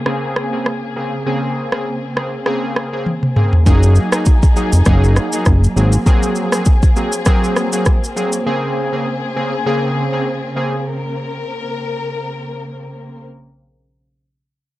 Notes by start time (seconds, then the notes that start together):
Already playing: C#3 A#3 C4 G#4
0.06 C#3 A#3 C4 G#4, cross-stick
0.36 cross-stick
0.53 C#3 A#3 C4 G#4
0.66 cross-stick
0.96 C#3 A#3 C4 G#4
1.26 C#3 A#3 C4 G#4
1.72 C#3 A#3 C4 G#4, cross-stick
2.16 C#3 A#3 C4 G#4, cross-stick
2.46 C#3 A#3 C4 G#4, cross-stick
2.76 cross-stick
2.93 C#3 A#3 C4 G#4
3.06 high tom
3.23 mid tom
3.36 C#3 A#3 C4 G#4, mid tom
3.53 floor tom
3.66 F#1 F#3 A#3 D#4 G#4, kick, shaker
3.83 shaker
3.95 shaker
4.12 F#3 A#3 D#4 G#4, cross-stick, shaker
4.25 kick, shaker
4.43 kick, shaker
4.56 F#3 A#3 D#4 G#4, shaker
4.73 F1, shaker
4.85 F#1 F#3 A#3 D#4 G#4, kick, cross-stick, shaker
5.04 shaker
5.16 cross-stick, shaker
5.33 F#3 A#3 D#4 G#4, shaker
5.45 F#1, kick, cross-stick, shaker
5.64 shaker
5.76 G#1 F#3 A#3 C4 G#4, shaker
5.92 shaker
6.06 F#3 A#3 C4 G#4, kick, shaker
6.23 shaker
6.35 shaker
6.52 F#3 A#3 C4 G#4, cross-stick, shaker
6.65 kick, shaker
6.83 kick, shaker
6.96 F#3 A#3 C4 G#4, shaker
7.13 shaker
7.25 F#3 A#3 C4 G#4, kick, cross-stick, shaker
7.44 shaker
7.56 cross-stick, shaker
7.73 F#3 A#3 C4 G#4, shaker
7.86 kick, cross-stick, shaker
8.04 shaker
8.16 F#3 A#3 C4 G#4, shaker
8.32 shaker
8.46 C#3 A#3 C4 G#4
8.93 C#3 A#3 C4 G#4
9.36 C#3 A#3 C4 G#4
9.66 C#3 A#3 C4 G#4
10.13 C#3 A#3 C4 G#4
10.56 C#3 A#3 C4 G#4
10.86 A#4